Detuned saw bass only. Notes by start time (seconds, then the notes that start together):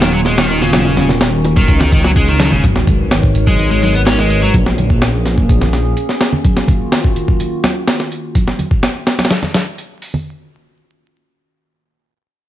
Already playing: D#1
0.73 D#1
0.85 D#1
1.68 C#2
2.64 G#1
3.59 G#1
4.54 A#1
4.66 A#1